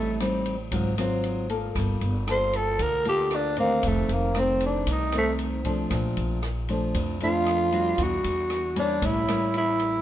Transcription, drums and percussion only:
0.20 cross-stick medium
0.20 ride soft
0.46 ride soft
0.72 kick medium
0.72 ride medium
0.98 cross-stick medium
0.98 ride soft
1.24 ride soft
1.50 ride soft
1.75 kick medium
1.75 cross-stick medium
1.75 ride medium
2.01 ride soft
2.27 cross-stick medium
2.27 ride soft
2.53 ride soft
2.79 kick medium
2.79 ride medium
3.05 ride soft
3.31 cross-stick medium
3.31 ride soft
3.57 ride soft
3.83 kick medium
3.83 ride medium
4.09 ride medium
4.35 cross-stick medium
4.35 ride soft
4.60 ride soft
4.87 kick medium
4.87 ride medium
5.12 cross-stick medium
5.12 ride soft
5.39 ride soft
5.65 kick medium
5.65 ride soft
5.90 kick medium
5.90 cross-stick medium
5.90 ride medium
6.17 ride soft
6.43 cross-stick medium
6.43 ride soft
6.68 ride soft
6.94 kick medium
6.94 ride medium
7.20 ride soft
7.46 cross-stick medium
7.46 ride soft
7.72 ride soft
7.98 kick medium
7.98 ride medium
8.24 ride soft
8.50 cross-stick medium
8.50 ride soft
8.76 ride soft
9.02 kick medium
9.02 ride medium
9.28 cross-stick medium
9.28 ride medium
9.54 ride soft
9.79 ride soft

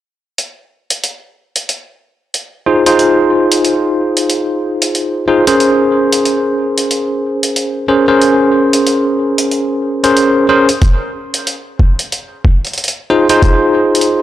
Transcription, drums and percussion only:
0.38 closed hi-hat soft
0.90 closed hi-hat medium
1.04 closed hi-hat medium
1.56 closed hi-hat medium
1.69 closed hi-hat medium
2.34 closed hi-hat medium
2.86 closed hi-hat medium
2.99 closed hi-hat soft
3.52 closed hi-hat medium
3.65 closed hi-hat medium
4.17 closed hi-hat medium
4.30 closed hi-hat medium
4.82 closed hi-hat medium
4.95 closed hi-hat medium
5.47 closed hi-hat medium
5.60 closed hi-hat soft
6.12 closed hi-hat medium
6.25 closed hi-hat medium
6.78 closed hi-hat medium
6.91 closed hi-hat soft
7.43 closed hi-hat medium
7.56 closed hi-hat medium
8.21 closed hi-hat soft
8.73 closed hi-hat medium
8.87 closed hi-hat medium
9.38 closed hi-hat medium
9.51 closed hi-hat soft
10.04 closed hi-hat medium
10.17 closed hi-hat medium
10.69 closed hi-hat medium
10.82 kick loud
10.82 closed hi-hat soft
11.34 closed hi-hat medium
11.47 closed hi-hat medium
11.79 kick loud
11.99 closed hi-hat medium
12.12 closed hi-hat soft
12.45 kick loud
12.65 closed hi-hat soft
12.67 closed hi-hat soft
12.73 closed hi-hat soft
12.78 closed hi-hat soft
12.84 closed hi-hat soft
12.88 closed hi-hat medium
13.29 closed hi-hat medium
13.42 kick loud
13.42 closed hi-hat soft
13.95 closed hi-hat medium
14.01 closed hi-hat medium

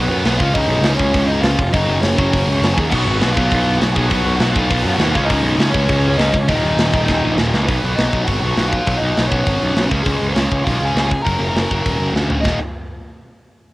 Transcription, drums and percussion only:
0.25 snare loud
0.25 open hi-hat medium
0.40 kick medium
0.55 kick loud
0.55 open hi-hat medium
0.84 snare loud
0.84 open hi-hat medium
0.99 kick loud
1.14 kick loud
1.14 open hi-hat medium
1.43 snare loud
1.43 open hi-hat medium
1.59 kick medium
1.74 kick loud
1.74 open hi-hat medium
2.03 snare loud
2.03 open hi-hat medium
2.18 kick loud
2.33 kick loud
2.33 open hi-hat medium
2.63 snare loud
2.63 open hi-hat medium
2.78 kick loud
2.91 kick loud
2.91 crash loud
3.21 snare loud
3.21 open hi-hat medium
3.37 kick medium
3.51 kick loud
3.51 open hi-hat medium
3.81 snare loud
3.81 open hi-hat medium
3.96 kick medium
4.10 kick loud
4.10 open hi-hat medium
4.40 snare loud
4.40 open hi-hat medium
4.56 kick medium
4.71 kick loud
4.71 open hi-hat medium
4.99 snare loud
4.99 open hi-hat medium
5.15 kick medium
5.30 kick loud
5.30 open hi-hat medium
5.60 snare loud
5.60 open hi-hat medium
5.74 kick loud
5.88 kick loud
5.88 open hi-hat medium
6.19 snare loud
6.19 open hi-hat medium
6.34 kick medium
6.48 kick medium
6.48 open hi-hat medium
6.79 snare loud
6.79 open hi-hat medium
6.94 kick loud
7.08 kick loud
7.08 snare medium
7.38 snare loud
7.54 snare medium
7.68 kick loud
7.68 open hi-hat medium
7.98 snare loud
7.98 open hi-hat medium
8.13 kick medium
8.27 kick loud
8.27 open hi-hat medium
8.57 snare loud
8.57 open hi-hat medium
8.73 kick medium
8.86 kick medium
8.86 open hi-hat medium
9.17 snare loud
9.17 open hi-hat medium
9.32 kick medium
9.47 kick loud
9.47 open hi-hat medium
9.76 snare loud
9.76 open hi-hat medium
9.91 kick medium
10.05 kick loud
10.05 open hi-hat medium
10.36 snare loud
10.36 open hi-hat medium
10.52 kick medium
10.67 kick medium
10.67 open hi-hat medium
10.97 snare loud
10.97 open hi-hat medium
11.12 kick medium
11.27 kick medium
11.27 open hi-hat medium
11.56 snare loud
11.56 open hi-hat medium
11.71 kick medium
11.86 kick loud
11.86 open hi-hat medium
12.16 snare medium
12.30 floor tom medium
12.45 kick medium
12.45 snare loud

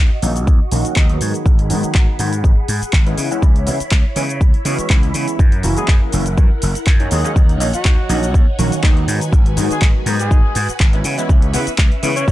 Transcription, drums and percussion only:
0.22 open hi-hat loud
0.22 cabasa medium
0.36 closed hi-hat medium
0.36 cabasa soft
0.47 kick loud
0.47 cabasa soft
0.72 open hi-hat loud
0.72 cabasa medium
0.85 closed hi-hat medium
0.85 cabasa soft
0.96 kick loud
0.96 clap loud
0.96 cabasa soft
1.09 closed hi-hat medium
1.21 open hi-hat loud
1.21 cabasa medium
1.34 closed hi-hat medium
1.34 cabasa soft
1.46 kick loud
1.46 cabasa soft
1.59 closed hi-hat soft
1.70 open hi-hat loud
1.70 cabasa medium
1.83 closed hi-hat medium
1.83 cabasa soft
1.95 kick loud
1.95 clap loud
1.95 cabasa soft
2.19 open hi-hat loud
2.19 cabasa medium
2.33 closed hi-hat medium
2.33 cabasa soft
2.44 kick loud
2.44 cabasa soft
2.68 open hi-hat loud
2.68 cabasa medium
2.82 closed hi-hat medium
2.82 cabasa soft
2.93 kick loud
2.93 clap loud
2.93 cabasa soft
3.07 closed hi-hat soft
3.18 open hi-hat loud
3.18 cabasa medium
3.31 closed hi-hat medium
3.31 cabasa soft
3.42 kick loud
3.42 cabasa soft
3.56 closed hi-hat soft
3.67 open hi-hat loud
3.67 cabasa medium
3.80 closed hi-hat medium
3.80 cabasa soft
3.91 kick loud
3.91 clap loud
3.91 cabasa soft
4.16 open hi-hat loud
4.16 cabasa medium
4.29 closed hi-hat medium
4.29 cabasa soft
4.41 kick loud
4.41 cabasa soft
4.54 closed hi-hat soft
4.65 open hi-hat loud
4.65 cabasa medium
4.78 closed hi-hat medium
4.78 cabasa soft
4.90 kick loud
4.90 clap loud
4.90 cabasa soft
5.03 closed hi-hat soft
5.14 open hi-hat loud
5.14 cabasa medium
5.28 closed hi-hat medium
5.28 cabasa soft
5.39 kick loud
5.39 cabasa soft
5.52 closed hi-hat soft
5.63 open hi-hat loud
5.63 cabasa medium
5.77 closed hi-hat medium
5.77 cabasa soft
5.88 kick loud
5.88 clap loud
5.88 cabasa soft
6.12 open hi-hat loud
6.12 cabasa medium
6.26 closed hi-hat medium
6.26 cabasa soft
6.38 kick loud
6.38 cabasa soft
6.62 open hi-hat loud
6.62 cabasa medium
6.75 closed hi-hat medium
6.75 cabasa soft
6.87 kick loud
6.87 clap loud
6.87 cabasa soft
7.00 closed hi-hat soft
7.11 open hi-hat loud
7.11 cabasa medium
7.25 closed hi-hat medium
7.25 cabasa soft
7.36 kick loud
7.36 cabasa soft
7.49 closed hi-hat medium
7.60 open hi-hat loud
7.60 cabasa medium
7.73 closed hi-hat medium
7.73 cabasa soft
7.85 kick loud
7.85 clap loud
7.85 cabasa soft
8.09 open hi-hat loud
8.09 cabasa medium
8.23 closed hi-hat medium
8.23 cabasa soft
8.34 kick loud
8.34 cabasa soft
8.59 open hi-hat loud
8.59 cabasa medium
8.72 closed hi-hat medium
8.72 cabasa soft
8.83 kick loud
8.83 clap loud
8.83 cabasa soft
8.97 closed hi-hat medium
9.08 open hi-hat loud
9.08 cabasa medium
9.21 closed hi-hat medium
9.21 cabasa soft
9.33 kick loud
9.33 cabasa soft
9.46 closed hi-hat medium
9.57 open hi-hat loud
9.57 cabasa medium
9.71 closed hi-hat medium
9.71 cabasa soft
9.82 kick loud
9.82 clap loud
9.82 cabasa soft
10.06 open hi-hat loud
10.06 cabasa medium
10.20 closed hi-hat medium
10.20 cabasa soft
10.31 kick loud
10.31 cabasa soft
10.55 open hi-hat loud
10.55 cabasa medium
10.69 closed hi-hat medium
10.69 cabasa soft
10.80 kick loud
10.80 clap loud
10.80 cabasa soft
10.93 closed hi-hat medium
11.04 open hi-hat medium
11.04 cabasa medium
11.18 closed hi-hat medium
11.18 cabasa soft
11.29 kick loud
11.29 cabasa soft
11.42 closed hi-hat medium
11.54 open hi-hat loud
11.54 cabasa medium
11.67 closed hi-hat medium
11.67 cabasa soft
11.78 kick loud
11.78 clap loud
11.78 cabasa soft
11.92 closed hi-hat soft
12.03 open hi-hat loud
12.03 cabasa medium
12.16 closed hi-hat medium
12.16 cabasa soft
12.28 kick loud
12.28 cabasa soft

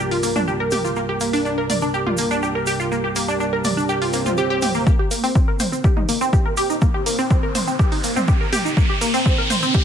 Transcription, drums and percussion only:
0.11 open hi-hat medium
0.23 open hi-hat medium
0.23 shaker medium
0.36 mid tom medium
0.36 shaker soft
0.48 shaker soft
0.71 mid tom medium
0.71 open hi-hat medium
0.71 shaker medium
0.85 shaker medium
0.96 shaker soft
1.20 open hi-hat loud
1.20 shaker medium
1.33 open hi-hat medium
1.33 shaker soft
1.46 shaker soft
1.70 mid tom medium
1.70 open hi-hat medium
1.70 shaker medium
1.81 shaker soft
1.94 shaker soft
2.07 mid tom medium
2.17 open hi-hat medium
2.17 shaker medium
2.31 shaker soft
2.43 shaker soft
2.66 open hi-hat loud
2.66 shaker medium
2.80 shaker soft
2.92 shaker soft
3.16 open hi-hat loud
3.16 shaker medium
3.29 shaker soft
3.40 shaker soft
3.64 mid tom medium
3.64 open hi-hat loud
3.64 shaker medium
3.78 shaker soft
3.89 shaker soft
4.02 open hi-hat medium
4.13 open hi-hat medium
4.13 shaker medium
4.26 mid tom medium
4.26 shaker medium
4.37 shaker soft
4.62 mid tom medium
4.62 open hi-hat loud
4.62 shaker medium
4.74 shaker medium
4.87 kick loud
4.87 shaker soft
5.11 open hi-hat loud
5.11 shaker medium
5.24 open hi-hat medium
5.24 shaker soft
5.35 kick loud
5.35 shaker soft
5.59 mid tom medium
5.59 open hi-hat loud
5.59 shaker medium
5.73 shaker medium
5.84 kick loud
5.84 shaker soft
5.97 mid tom medium
6.09 open hi-hat loud
6.09 shaker medium
6.21 shaker medium
6.33 kick loud
6.33 shaker soft
6.57 open hi-hat loud
6.57 shaker medium
6.70 shaker medium
6.82 kick loud
6.82 shaker soft
7.06 open hi-hat loud
7.06 shaker medium
7.19 shaker medium
7.31 kick loud
7.31 shaker soft
7.55 mid tom medium
7.55 open hi-hat loud
7.55 shaker medium
7.67 shaker soft
7.79 kick loud
7.79 shaker soft
7.92 open hi-hat medium
8.04 open hi-hat loud
8.04 shaker medium
8.16 mid tom medium
8.16 shaker medium
8.28 kick loud
8.28 shaker soft
8.53 mid tom medium
8.53 open hi-hat loud
8.53 shaker loud
8.66 shaker soft
8.77 kick loud
8.77 shaker soft
9.01 open hi-hat loud
9.01 shaker medium
9.14 open hi-hat medium
9.14 shaker medium
9.26 kick loud
9.26 shaker soft
9.50 mid tom medium
9.50 open hi-hat loud
9.50 shaker loud
9.63 shaker soft
9.74 kick loud
9.74 shaker soft

